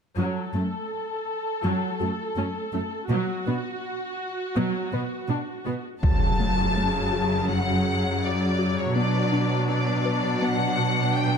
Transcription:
0.17 F#2 F#3 A4
0.54 F#2 A3
1.64 F#2 F#3
2.00 F#2 A3 F#4
2.36 F#2 A3 C#4
2.73 F#2 A3 C#4
3.10 B2 F#3 B3 F#4
3.47 B2 B3 D4
4.56 B2 F#3 B3
4.93 B2 B3 B4
5.29 B2 D4
5.66 B2 B3 F#4
6.02 F#2 C#3 F#3 A5, taiko, impact
6.40 A3
6.77 A3
7.13 F#4
7.49 F#3 F#5
8.23 D5
8.59 F#4
8.78 C#5
8.95 B2 B3 D4 D5
9.32 D4
9.69 D4 D5
10.05 B4
10.42 B3 F#5
11.14 G5

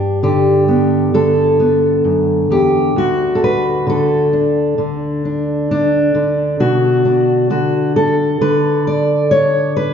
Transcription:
Already playing: G2 D4 G4
0.23 D3 G4
0.68 B3
1.14 D3 A4
1.60 B3
2.04 F#2
2.50 E2 G4
2.96 D2 F#4
3.35 A4
3.44 B4
3.87 D3 A4
4.33 D4
4.78 D3
5.25 D4
5.71 D4
6.15 D3
6.60 B2 F#4
7.05 D4
7.50 D3 F#4
7.96 A4
8.41 D3 B4
8.87 D5
9.31 C#5
9.77 B4

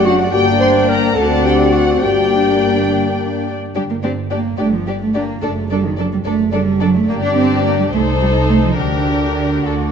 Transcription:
Already playing: F#1 F#2 A3 D4
0.05 F#3 D4 F#4 D5 F#5
0.20 A3 F#4 D5 F#5
0.33 G1 G2 A#3 D4 G4 D5 G5
0.60 C5 C6
0.89 A#4 A#5
1.15 D2 C4 D4 F#4 A4 D5 F#5 A5
1.44 G4 G5
1.72 F#4 F#5
2.01 G1 G2 A#3 D4 G4 D5 G5
3.75 G1 G3 D4 G4 D5
3.89 A#3
4.02 C4 D4 G4 D5
4.30 A#3 D4 G4 D5
4.58 G1 A3 D4 G4 D5
4.73 F3
4.87 G3 D4 G4 D5
5.01 A3
5.14 A#3 D4 G4 D5
5.42 F#1 A3 D4 A4 D5
5.70 G3 D4 A4 D5
5.84 D#3
5.97 F#3 D4 A4 D5
6.12 G3
6.25 F#1 A3 D4 A4 D5
6.53 G3 D4 A4 D5
6.80 F#3 D4 A4 D5
6.95 A3
7.08 G1 A#3 D4 G4 D5
7.23 D4
7.37 C4
7.65 A#3
7.79 G3
7.92 C2 A3 D#4 A4 C5
8.21 G3
8.50 A3
8.64 F3
8.78 D2 D3 D4 G4 A#4
9.65 D2 D4 F#4 A4

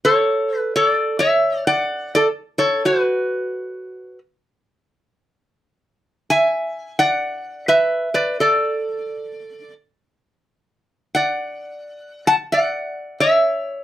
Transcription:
0.05 A4 C#5
0.58 B4
0.76 A4 C#5
0.88 D5
1.19 C#5 E5
1.67 D5 F#5
2.15 A4 D5
2.58 A4 C#5
2.85 F#4 B4
6.30 E5 G#5
6.99 D5 F#5
7.68 B4 E5
8.14 B4 D5
8.40 A4 D5
11.15 D5 F#5
12.27 F#5 A5
12.52 D5 F#5
13.20 C#5 E5

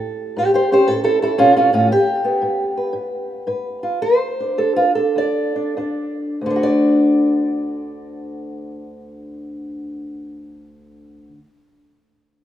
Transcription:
Already playing: A2 A4
0.37 A2 G4 C5
0.54 G4 C5
0.72 C#4 G4 C5
0.87 A2 E4 A4
1.04 E4 A4
1.22 C#4 E4 A4
1.38 B2 C#4 F4
1.57 C#4 F4
1.73 A2 C#4 F4
1.91 G2 G4
2.24 B3
2.42 G2
2.77 B4
2.93 G2
3.47 G2 B4
3.83 F4
4.02 D2 C5
4.40 D4
4.58 D2 A4
4.76 F4
4.89 A4
4.95 D4 A4
5.16 D2 D5
5.56 D4
5.77 D2 D4
6.41 D2
6.46 D3
6.50 D4
6.56 F#4
6.63 D5

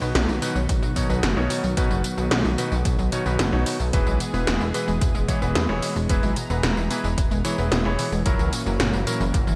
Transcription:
Already playing: D#3 F#3 B3 F#4
0.01 B1 B2 B3 D#4 F#4 B4, tambourine
0.15 B1 B2, snare, closed hi-hat, tambourine
0.28 B1 D#4, tambourine
0.42 B2 D#4 F#4 B4, closed hi-hat, tambourine
0.55 B1 F#3, tambourine
0.69 B1 B2, kick, closed hi-hat, tambourine
0.83 B1 F#3, tambourine
0.96 B2 D#4 F#4 C#5, kick, closed hi-hat, tambourine
1.09 B1 B2 B3 D#4 F#4 B4, tambourine
1.23 F#1 B2, snare, closed hi-hat, tambourine
1.36 B1 B2 D#4 F#4 C#5
1.50 B2, open hi-hat, tambourine
1.63 B1 F#3, tambourine
1.77 B1 B2 D#4 F#4 B4, kick, closed hi-hat, tambourine
1.90 F#1 F#3, tambourine
2.04 B2, closed hi-hat, tambourine
2.17 B1 B2 B3 D#4 F#4 B4, tambourine
2.31 B1 B2, snare, closed hi-hat, tambourine
2.45 B1 D#4, tambourine
2.58 B2 D#4 F#4 B4, closed hi-hat, tambourine
2.72 B1 F#3, tambourine
2.85 B1 B2, kick, closed hi-hat, tambourine
2.99 B1 F#3, tambourine
3.12 B2 D#4 F#4 C#5, closed hi-hat, tambourine
3.26 B1 B2 B3 D#4 F#4 B4, tambourine
3.39 F#1 B2, snare, closed hi-hat, tambourine
3.53 B1 B2 D#4 F#4 C#5
3.66 B2, open hi-hat, tambourine
3.80 B1 F#3, tambourine
3.93 E1 B2 E3 G#3 E4 G#4 B4, kick, closed hi-hat, tambourine
4.06 B1 G#3, tambourine
4.20 B2, closed hi-hat, tambourine
4.34 E1 E3 B3 E4 G#4 B4, tambourine
4.47 E1 B2, snare, closed hi-hat, tambourine
4.61 E1 E4, tambourine
4.74 B2 E3 E4 G#4 B4, closed hi-hat, tambourine
4.88 E1 G#3, tambourine
5.01 E1 B2, kick, closed hi-hat, tambourine
5.15 E1 G#3, tambourine
5.28 B2 E3 E4 G#4 C#5, kick, closed hi-hat, tambourine
5.42 E1 E3 B3 E4 G#4 B4, tambourine
5.55 E2 B2, snare, closed hi-hat, tambourine
5.69 E1 E3 E4 G#4 C#5
5.82 B2, open hi-hat, tambourine
5.96 E1 G#3, tambourine
6.09 E1 B2 E3 E4 G#4 B4 A#5, kick, closed hi-hat, tambourine
6.23 B1 G#3, tambourine
6.36 B2, closed hi-hat, tambourine
6.50 E1 E3 B3 E4 G#4 B4, tambourine
6.63 E1 B2, snare, closed hi-hat, tambourine
6.77 E1 E4, tambourine
6.91 B2 E3 E4 G#4 B4, closed hi-hat, tambourine
7.04 E1 G#3, tambourine
7.18 E1 B2, kick, closed hi-hat, tambourine
7.31 E1 G#3, tambourine
7.45 B2 E3 E4 G#4 C#5, closed hi-hat, tambourine
7.58 E1 E3 B3 E4 G#4 B4, tambourine
7.72 E1 B2, snare, closed hi-hat, tambourine
7.85 E1 E3 E4 G#4 C#5
7.99 B2, open hi-hat, tambourine
8.12 E1 G#3, tambourine
8.26 F#1 A#2 F#3 C#4 E4 F#4 A#4, kick, closed hi-hat, tambourine
8.39 C#2 E3, tambourine
8.53 A#2, closed hi-hat, tambourine
8.66 F#1 F#3 E4 F#4 A#4, tambourine
8.80 F#1 A#2, snare, closed hi-hat, tambourine
8.93 F#1 A#3, tambourine
9.07 A#2 F#3 E4 F#4 A#4, closed hi-hat, tambourine
9.20 F#1 E3, tambourine
9.34 F#1 A#2, kick, closed hi-hat, tambourine
9.47 F#1 E3, tambourine

